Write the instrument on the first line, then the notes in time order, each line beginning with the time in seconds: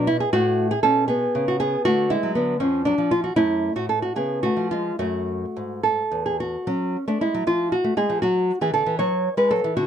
nylon-string guitar
Already playing: B2
0.07 E4
0.20 G#4
0.33 A2 A3 F#4
0.71 G#4
0.83 B2 C#4 A4
1.08 B3 G#4
1.35 C#3
1.48 F#4
1.60 B3 G#4
1.85 D3 A3 F#4
2.10 G#3 E4
2.23 F#3
2.35 D3 B3
2.60 F2 F3 C#4
2.85 F#3 D4
2.98 F3
3.11 F4
3.24 F#4
3.36 F#2 A3 E4
3.76 A2 F#4
3.89 A4
4.02 F#4
4.16 C#3 B3 G#4
4.43 A3 F#4
4.57 F3
4.71 G#3 F4
4.99 F#2 A3 F#4
5.56 G#2
5.83 A4
6.11 E2
6.26 G#4
6.40 F#4
6.67 F#3 C#4
7.08 A3 D4
7.21 G#3 E4
7.34 F#3
7.47 F3 F4
7.72 F#4
7.84 A3
7.97 G#3 G#4
8.10 F3
8.22 F#3 F#4
8.61 E3 G#4
8.74 D3 A4
8.86 E3
8.99 F#3 C#5
9.37 G#3 B4
9.51 F#3 A4
9.64 E3
9.77 D3 F#4